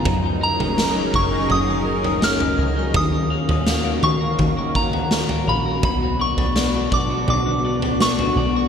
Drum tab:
SD |----o-------o---|----o-------o---|----o-------o---|
FT |o--o----o--o-o--|o--o--o-o--o-o--|o--o----o--o-o--|
BD |o-----o---------|o-------o-o-----|o-----o---------|